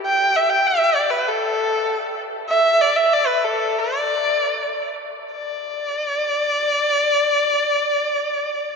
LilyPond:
\new Staff \with { instrumentName = "Erhu" } { \time 2/4 \tempo 4 = 88 g''8 e''16 g''16 e''8 d''16 b'16 | a'4. r8 | e''8 d''16 e''16 d''16 b'16 a'8 | d''4. r8 |
d''2~ | d''2 | }